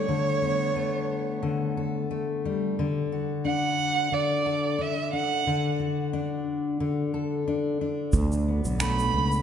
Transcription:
Already playing: steel-string acoustic guitar G3 A3 B3 A4, violin C#5
0.08 steel-string acoustic guitar D3
0.42 steel-string acoustic guitar B3
0.76 steel-string acoustic guitar A3
1.43 steel-string acoustic guitar D3
1.77 steel-string acoustic guitar A4
2.11 steel-string acoustic guitar A3
2.45 steel-string acoustic guitar G3
2.79 steel-string acoustic guitar D3
3.12 steel-string acoustic guitar F#4
3.45 steel-string acoustic guitar D4, violin F#5
4.12 steel-string acoustic guitar D3, violin D5
4.46 steel-string acoustic guitar A4
4.79 steel-string acoustic guitar D4, violin E5
5.13 steel-string acoustic guitar D4, violin F#5
5.47 steel-string acoustic guitar D3
5.80 steel-string acoustic guitar F#4
6.13 steel-string acoustic guitar D4
6.80 steel-string acoustic guitar D3
7.14 steel-string acoustic guitar A4
7.48 steel-string acoustic guitar D4
7.81 steel-string acoustic guitar D4
8.13 fretless electric bass D2, kick, shaker
8.32 shaker
8.48 steel-string acoustic guitar B3
8.65 fretless electric bass B1, shaker
8.80 steel-string acoustic guitar A3, violin B5, finger snap, shaker
8.99 shaker
9.14 fretless electric bass C#2
9.32 shaker

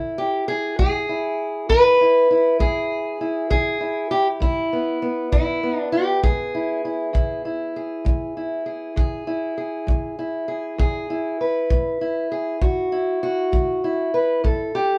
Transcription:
Already playing: steel-string acoustic guitar E2 E4
0.18 steel-string acoustic guitar G4
0.48 steel-string acoustic guitar G#4
0.79 steel-string acoustic guitar G#3 G#4, kick
1.09 steel-string acoustic guitar E4
1.69 steel-string acoustic guitar E2 B4, kick
2.01 steel-string acoustic guitar E4
2.31 steel-string acoustic guitar E4
2.59 steel-string acoustic guitar G#3 G#4, kick
3.21 steel-string acoustic guitar E4
3.50 steel-string acoustic guitar E2 G#4, kick
3.81 steel-string acoustic guitar E4
4.11 steel-string acoustic guitar G4
4.40 steel-string acoustic guitar G#3 E4, kick
4.73 steel-string acoustic guitar B3
5.02 steel-string acoustic guitar B3
5.32 steel-string acoustic guitar E2 E4, kick
5.63 steel-string acoustic guitar B3
5.79 steel-string acoustic guitar D4
5.92 steel-string acoustic guitar G4
6.23 steel-string acoustic guitar G#3 G#4, kick
6.55 steel-string acoustic guitar E4
6.85 steel-string acoustic guitar E4
7.13 steel-string acoustic guitar E2 E4, kick
7.45 steel-string acoustic guitar E4
7.76 steel-string acoustic guitar G#4
8.05 steel-string acoustic guitar G#3, kick
8.37 steel-string acoustic guitar E4
8.66 steel-string acoustic guitar G#4
8.96 steel-string acoustic guitar E2 G#4, kick
9.27 steel-string acoustic guitar E4
9.58 steel-string acoustic guitar G#4
9.87 steel-string acoustic guitar G#3, kick
10.19 steel-string acoustic guitar E4
10.48 steel-string acoustic guitar G#4
10.78 steel-string acoustic guitar E2 G#4, kick
11.10 steel-string acoustic guitar E4
11.41 steel-string acoustic guitar B4
11.70 steel-string acoustic guitar G#3, kick
12.01 steel-string acoustic guitar E4
12.32 steel-string acoustic guitar G#4
12.62 steel-string acoustic guitar E2 F#4, kick
12.92 steel-string acoustic guitar E4
13.23 steel-string acoustic guitar F#4
13.52 steel-string acoustic guitar G#3, kick
13.84 steel-string acoustic guitar E4
14.14 steel-string acoustic guitar B4
14.44 steel-string acoustic guitar A2 A4, kick
14.75 steel-string acoustic guitar G4

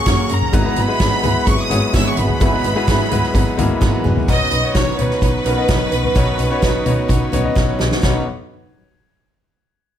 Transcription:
Already playing: string section A#3 C#5 F#5 C#6, grand piano C#4 F#4 G#4 A#4, violin section C#6
0.06 double bass F#2, steel-string acoustic guitar F#3 A#3 C#4 F#4 A#4, kick, snare, closed hi-hat
0.29 double bass F#2, steel-string acoustic guitar C#4 F#4 A#4, violin section A#5, closed hi-hat
0.42 floor tom
0.52 double bass G#1, steel-string acoustic guitar G#2 E3 F#3 B3 F#4 G#4, grand piano G#2 G#3 B3 E4 F#4 B4, string section G#4 E5 B5, kick, closed hi-hat
0.65 grand piano G#3 B3 E4 F#4 B4
0.76 double bass G#1, steel-string acoustic guitar F#3 B3 F#4 G#4, violin section B5, closed hi-hat
0.88 grand piano G#3 B3 E4 F#4 B4
1.00 double bass G#1, steel-string acoustic guitar G#2 E3 F#3 B3 F#4 G#4, kick, snare, closed hi-hat
1.23 double bass G#2, steel-string acoustic guitar F#3 B3 F#4 G#4, grand piano G#3 B3 E4 F#4 B4, closed hi-hat, floor tom
1.46 double bass G#1, steel-string acoustic guitar F#3 B3 F#4 G#4, violin section C#6, kick, closed hi-hat
1.61 violin section D#6
1.70 double bass G#1, grand piano G#3 B3 E4 F#4 C#5, closed hi-hat
1.93 double bass G#1, steel-string acoustic guitar G#2 E3 F#3 B3 F#4 G#4, violin section E6, kick, snare, closed hi-hat
2.08 violin section C#6
2.17 double bass G#1, steel-string acoustic guitar F#3 B3 F#4 G#4, violin section B5, closed hi-hat
2.29 floor tom
2.40 double bass G#1, steel-string acoustic guitar G#2 E3 F#3 B3 F#4 G#4, grand piano G#2 G#3 B3 E4 F#4 B4, kick, closed hi-hat
2.52 grand piano G#3 B3 E4 F#4 B4
2.63 double bass G#1, steel-string acoustic guitar F#3 B3 F#4 G#4, closed hi-hat
2.76 grand piano G#3 B3 E4 F#4 B4
2.87 double bass G#1, steel-string acoustic guitar G#2 E3 F#3 B3 F#4 G#4, kick, snare, closed hi-hat
3.10 double bass G#2, steel-string acoustic guitar F#3 B3 F#4 G#4, grand piano G#3 B3 E4 F#4 B4, closed hi-hat, floor tom
3.23 snare
3.34 double bass G#1, steel-string acoustic guitar F#3 B3 F#4 G#4, kick, closed hi-hat
3.57 double bass G#1, grand piano G#3 A#3 B3 E4 F#4, closed hi-hat, floor tom
3.81 double bass G#1, steel-string acoustic guitar G#2 E3 F#3 B3 F#4 G#4, kick, snare
4.04 double bass G#1, steel-string acoustic guitar F#3 B3 F#4 G#4, mid tom
4.17 floor tom
4.28 double bass B1, steel-string acoustic guitar B2 D#3 F#3 C#4 D#4 B4, grand piano B2 B3 D#4 F#4 C#5, string section B4 D#5 F#5 C#6, violin section D#5, kick, closed hi-hat
4.51 double bass B1, steel-string acoustic guitar F#3 C#4 D#4 B4, closed hi-hat
4.63 grand piano B3 D#4 F#4 C#5
4.75 double bass B1, steel-string acoustic guitar B2 D#3 F#3 C#4 D#4 B4, violin section C#5, kick, snare, closed hi-hat
4.98 double bass B2, grand piano B3 D#4 F#4 C#5, violin section B4, closed hi-hat, floor tom
5.11 snare
5.21 double bass B1, steel-string acoustic guitar F#3 C#4 D#4 B4, kick, closed hi-hat
5.44 double bass B1, steel-string acoustic guitar F#3 C#4 D#4 B4, grand piano B3 D#4 F#4 A#4, closed hi-hat
5.56 grand piano B3 D#4 F#4 D#5
5.68 double bass B1, steel-string acoustic guitar B2 D#3 F#3 C#4 D#4 B4, kick, snare, closed hi-hat
5.91 double bass B1, steel-string acoustic guitar F#3 C#4 D#4 B4, closed hi-hat
6.04 floor tom
6.15 double bass B1, steel-string acoustic guitar B2 D#3 F#3 C#4 D#4 B4, grand piano B2 B3 D#4 F#4 C#5, kick, closed hi-hat
6.38 double bass B1, steel-string acoustic guitar F#3 C#4 D#4 B4, closed hi-hat
6.50 grand piano B3 D#4 F#4 C#5
6.62 double bass B1, steel-string acoustic guitar B2 D#3 F#3 C#4 D#4 B4, kick, snare, closed hi-hat
6.85 double bass B2, grand piano B3 D#4 F#4 C#5, closed hi-hat, floor tom
7.08 double bass B1, steel-string acoustic guitar F#3 C#4 D#4 B4, kick, closed hi-hat
7.32 double bass B1, steel-string acoustic guitar F#3 C#4 D#4 B4, grand piano B3 D#4 F#4 C#5, closed hi-hat, floor tom
7.44 grand piano B3 D#4 F#4 D#5
7.55 double bass B1, steel-string acoustic guitar B2 D#3 F#3 C#4 D#4 B4, kick, snare
7.79 double bass B1, steel-string acoustic guitar F#3 C#4 D#4 B4, snare
7.92 snare
8.03 double bass B1, grand piano B1 B3 D#4 F#4 C#5, steel-string acoustic guitar B2 D#3 F#3 C#4 D#4 B4, string section D#4 B4 C#5 F#5, kick, snare

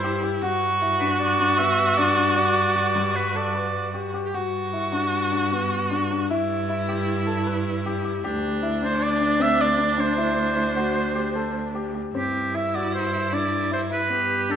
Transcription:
Already playing: cello G2, viola E4, oboe C5
0.04 grand piano G4
0.23 grand piano G4
0.42 cello G2, viola F#4, grand piano F#4
0.82 grand piano E4
1.00 grand piano D4, oboe B4
1.20 oboe D5
1.40 grand piano D4
1.58 grand piano B3, oboe E5
1.97 grand piano D4, oboe D5
2.17 grand piano D4
2.36 grand piano F#4, oboe D5
2.76 grand piano F#4
2.95 grand piano G3
3.16 oboe B4
3.35 grand piano A4, oboe D5
3.55 grand piano B4
3.94 grand piano G4
4.14 grand piano G4
4.26 viola G4
4.33 cello G2, grand piano F#4, viola F#4
4.73 grand piano E4
4.92 grand piano D4
5.32 grand piano D4
5.52 grand piano B3
5.91 grand piano D4
6.11 grand piano D4
6.29 cello G2, viola E4, grand piano E4
6.69 grand piano E4
6.88 grand piano G4
7.27 grand piano A4
7.46 grand piano B4
7.86 grand piano G4
8.04 grand piano G4
8.23 cello D2, viola D4, grand piano G4
8.63 grand piano E4
8.82 grand piano D4, oboe C5
9.03 oboe D5
9.21 grand piano D4
9.40 grand piano C4, oboe E5
9.61 oboe D5
9.78 grand piano D4
9.98 grand piano D4, oboe C5
10.18 grand piano E4
10.56 grand piano E4
10.76 grand piano F#4
11.15 grand piano G4
11.35 grand piano A4
11.75 grand piano G4
11.94 grand piano G4
12.14 cello G2, grand piano C4, viola E4, oboe G4
12.54 grand piano E4, oboe E5
12.74 grand piano F#4, oboe D5
12.95 oboe C5
13.13 grand piano E4
13.32 grand piano D4, oboe D5
13.71 grand piano E4, oboe C5
13.90 grand piano E4, oboe B4
14.10 cello G2, grand piano B3, viola G4
14.49 grand piano D4, oboe A4

